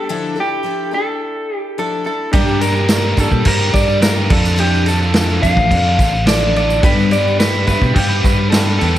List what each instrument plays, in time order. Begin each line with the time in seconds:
Already playing: clean electric guitar A4
0.09 twelve-string acoustic guitar D3 F3 D4 E4 A4
0.36 twelve-string acoustic guitar D4 E4 A4
0.40 clean electric guitar G4
0.63 twelve-string acoustic guitar F3 D4 E4 A4
0.91 twelve-string acoustic guitar D4 E4 A4, clean electric guitar A4
1.56 clean electric guitar G4
1.78 twelve-string acoustic guitar F3 D4 E4 A4, clean electric guitar A4
2.04 twelve-string acoustic guitar D4 E4 A4, clean electric guitar A4
2.33 twelve-string acoustic guitar G2 D3 G3 A#3 D4 G4, fingered electric bass G2, overdriven electric guitar G3 D4 G4 A#4, upright piano D4 G4 A#4 D5, clean electric guitar G4, kick, tambourine, crash
2.48 tambourine
2.61 twelve-string acoustic guitar G3 A#3 D4 G4, clean electric guitar A#4, tambourine, crash
2.75 overdriven electric guitar D4 G4 A#4, tambourine
2.88 overdriven electric guitar G3 D4 G4 A#4, twelve-string acoustic guitar G3 A#3, upright piano D4 G4, snare, tambourine, crash
2.92 twelve-string acoustic guitar D4 G4, upright piano A#4 D5
3.15 fingered electric bass G2, overdriven electric guitar G3 D4 G4 A#4, twelve-string acoustic guitar G4, kick, tambourine, crash
3.19 twelve-string acoustic guitar G3 A#3 D4, upright piano D4 G4 A#4 D5, clean electric guitar A4
3.31 fingered electric bass A#2, muted overdriven electric guitar stroke, kick
3.45 fingered electric bass G2, upright piano D4 G4 A#4 C5, clean electric guitar A#4, kick, tambourine, crash
3.58 overdriven electric guitar D4 G4 A#4
3.72 fingered electric bass G2, overdriven electric guitar G3 D4 G4 A#4, clean electric guitar D5, kick, tambourine, crash
3.87 muted overdriven electric guitar stroke, tambourine
4.01 overdriven electric guitar G3 D4 G4 A#4, twelve-string acoustic guitar G3 A#3 D4 G4, upright piano D4 G4 A#4 F5, clean electric guitar A#4, snare, tambourine, crash
4.15 overdriven electric guitar D4 G4 A#4
4.29 fingered electric bass F2, overdriven electric guitar D3 F3 D4 F4 A4, twelve-string acoustic guitar D4 E4 A4, upright piano F4 A4 D5, clean electric guitar A4, kick, tambourine, crash
4.45 tambourine
4.56 overdriven electric guitar D3 F3 D4, twelve-string acoustic guitar F3 D4 E4 A4, clean electric guitar G4, tambourine, crash
4.60 overdriven electric guitar F4 A4
4.74 tambourine
4.86 twelve-string acoustic guitar D4 E4 A4, clean electric guitar A4, tambourine, crash
5.01 overdriven electric guitar D4 F4 A4, tambourine
5.14 overdriven electric guitar D3 F3 D4 F4 A4, twelve-string acoustic guitar F3 D4 E4 A4, upright piano E4 F4 A4 F5, snare, tambourine, crash
5.30 tambourine
5.42 fingered electric bass F2, overdriven electric guitar D3 D4 F4 A4, twelve-string acoustic guitar D4 A4, upright piano E4 F4 A4 D5, clean electric guitar F5, kick, tambourine, crash
5.57 fingered electric bass A1, muted overdriven electric guitar stroke, kick, tambourine
5.71 fingered electric bass F2, upright piano F4 A4 D5, kick, tambourine, crash
5.84 overdriven electric guitar D4 F4 A4
5.98 fingered electric bass A1, overdriven electric guitar D3 D4 F4 A4, kick, tambourine, crash
6.12 muted overdriven electric guitar stroke
6.26 overdriven electric guitar D3 F3 D4 F4 A4, twelve-string acoustic guitar F3 D4 E4, upright piano F4 A4 D5, clean electric guitar D5, snare, tambourine, crash
6.30 twelve-string acoustic guitar A4
6.40 overdriven electric guitar D4 F4 A4
6.56 overdriven electric guitar D3 D4 F4 A4, twelve-string acoustic guitar D4 E4 A4, clean electric guitar D5, tambourine, crash
6.70 tambourine
6.82 fingered electric bass G2, twelve-string acoustic guitar G2 D3 G3 B3 D4 G4, overdriven electric guitar G3 B3 D4, upright piano D4 G4 B4 D5, clean electric guitar B4, kick, tambourine, crash
6.86 overdriven electric guitar B4
6.99 tambourine
7.11 twelve-string acoustic guitar G3 B3 D4 G4, clean electric guitar D5, tambourine, crash
7.25 overdriven electric guitar B3 D4 B4, tambourine
7.39 overdriven electric guitar G3 B3 D4 B4, twelve-string acoustic guitar G3 B3 D4 G4, upright piano D4 G4 B4 D5, clean electric guitar B4, snare, tambourine, crash
7.67 fingered electric bass G2, overdriven electric guitar G3 D4, twelve-string acoustic guitar G3 B3 D4 G4, upright piano D4 G4 B4 E5, clean electric guitar B4, kick, tambourine, crash
7.71 overdriven electric guitar B3 B4
7.82 fingered electric bass B2, muted overdriven electric guitar stroke, kick, tambourine
7.94 fingered electric bass G2, upright piano D4, clean electric guitar G4, kick, tambourine, crash
7.98 upright piano G4 B4 F5
8.09 overdriven electric guitar B3 D4 B4
8.23 fingered electric bass G2, overdriven electric guitar G3 B3 D4 B4, clean electric guitar B4, kick, tambourine, crash
8.39 muted overdriven electric guitar stroke
8.50 twelve-string acoustic guitar G3 B3 D4 G4, overdriven electric guitar G3 B3 D4, upright piano D4 G4 B4 F5, clean electric guitar A4, snare, tambourine, crash
8.54 overdriven electric guitar B4
8.66 overdriven electric guitar B3 D4 B4
8.79 fingered electric bass E2, overdriven electric guitar G3 B3 D4 B4, twelve-string acoustic guitar B3 D4 G4, clean electric guitar A4, snare, crash
8.84 twelve-string acoustic guitar G3